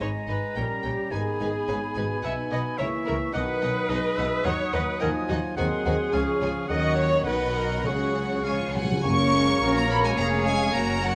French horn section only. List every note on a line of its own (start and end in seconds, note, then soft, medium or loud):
0.00 0.52 G#3 soft
0.00 0.53 D#4 soft
0.57 1.13 G3 soft
0.57 1.13 C#4 soft
1.12 2.21 B3 medium
1.12 2.21 D#4 medium
2.25 2.79 B3 medium
2.25 2.79 D#4 medium
2.79 3.33 A#3 medium
2.79 3.34 E4 medium
3.33 4.43 F#3 medium
3.33 4.43 D#4 medium
4.44 5.00 F#3 medium
4.44 4.99 D#4 medium
5.03 5.56 F#3 medium
5.03 5.57 D#4 medium
5.57 6.12 F#3 medium
5.57 6.13 C4 medium
6.11 6.68 F3 medium
6.11 6.67 C#4 medium
6.68 7.25 F#3 medium
6.68 7.24 C#4 medium
7.26 7.82 F#3 medium
7.26 7.85 D#4 medium
7.83 8.42 F#3 medium
7.83 8.42 C#4 medium
8.43 8.74 F3 medium
8.43 8.57 G#3 medium
8.43 8.74 C#4 medium
8.72 9.03 F#3 medium
9.04 9.75 C#4 medium
9.75 9.90 A#3 medium
9.89 10.04 B3 medium
10.04 10.18 G#3 medium
10.15 10.44 A#3 medium
10.46 10.75 G#3 medium
10.72 11.03 A#3 medium
11.01 11.15 F#3 medium